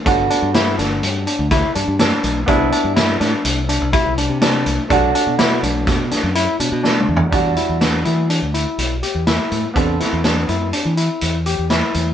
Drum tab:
HH |x--x--x--x--x--x--x--x--x--x--|x--x--x--x--x--x--x--x--x--x--|x--x--x--x--x--x--x--x--------|x--x--x--x--x--x--x--x--x--x--|
SD |------o--o--------o-----o-----|------o--o--------------o-----|------o-----o--o--------o-----|------o-----------------o-----|
T2 |------------------------------|------------------------------|--------------------------o---|------------------------------|
FT |------------------------------|------------------------------|----------------------------o-|------------------------------|
BD |o-----------------o-----------|o-----------------o-----------|o-----------o-----------------|o-----------------------------|

HH |x--x--x--x--x--x--x--x--x--x--|
SD |---o--o-----------------o-----|
T2 |------------------------------|
FT |------------------------------|
BD |o-----------------------------|